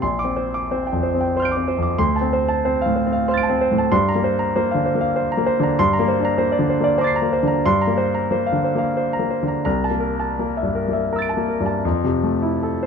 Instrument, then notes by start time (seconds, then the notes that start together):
grand piano
0.02 A#1 C6
0.19 D6
0.24 C4
0.36 C5
0.54 D6
0.71 C4 C5
0.87 G5
0.92 F2
1.03 C5
1.14 C4
1.21 G5
1.36 C5 C6 F6
1.42 G6 D7
1.52 D6
1.57 C4
1.68 C5
1.78 F2
1.83 D6
1.98 D2 C6
2.16 A5
2.21 C4
2.33 C5
2.49 A5
2.65 C4 C5
2.82 F5
2.86 A2
2.96 C5
3.07 C4
3.13 F5
3.28 C5 C6 F6
3.34 A6 D7
3.43 A5
3.49 C4
3.61 C5
3.71 A2
3.78 A5
3.92 G2 C6
4.09 A#5
4.15 A#3
4.24 C5
4.39 A#5
4.56 A#3 C5
4.71 D3 F5
4.86 C5
4.95 A#3
5.01 F5
5.16 C5
5.32 A#5
5.37 A#3
5.46 C5
5.60 D3 A#5
5.79 G2 C6
5.93 A#5
5.99 A#3
6.08 C5
6.20 D4
6.25 A#5
6.38 A#3 C5
6.52 D5
6.59 D3
6.70 C5
6.80 A#3 D5
6.98 D4 C5 A#5 D6
7.04 A6 C7
7.16 A#5
7.22 A#3
7.33 C5
7.43 D3
7.48 A#5
7.66 G2 C6
7.82 A#5
7.87 A#3
7.97 C5
8.15 A#5
8.31 A#3 C5
8.46 F5
8.52 D3
8.64 C5
8.75 A#3 F5
8.97 C5
9.13 A#5
9.19 A#3
9.30 C5
9.43 D3
9.48 A#5
9.65 C2 A#5
9.84 A5
9.90 A#3
10.00 A#4
10.20 A5
10.39 A#3 A#4
10.57 E5
10.63 G2
10.75 A#4
10.88 A#3
10.93 E5
11.13 A#4 A#5 E6
11.19 A6 D7
11.29 A5
11.37 A#3
11.49 A#4
11.60 G2
11.66 A5
11.85 F2
12.04 C3
12.24 A3
12.42 E4
12.63 A4
12.83 C5